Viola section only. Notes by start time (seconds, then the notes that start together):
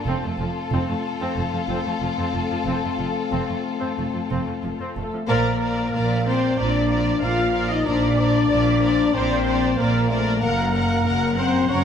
0.08 C4
0.24 A3
0.40 F3
0.73 C4
0.89 A3
1.21 C4
1.36 A3
1.53 F3
1.69 C4
1.85 A3
2.02 F3
2.18 C4
2.34 A3
2.51 F3
2.66 C4
2.83 A3
2.98 F3
3.31 C4
3.47 A3
3.80 C4
3.97 A3
4.12 F3
4.29 C4
4.46 A3
4.64 F3
4.80 C4
4.96 A3 A4
5.13 F3
5.29 A#4
6.26 C5
6.58 D5
7.22 F5
7.70 D#5
7.86 D5
9.15 C5
9.79 A#4
10.11 A#4
10.43 A#4
11.39 C5
11.71 C#5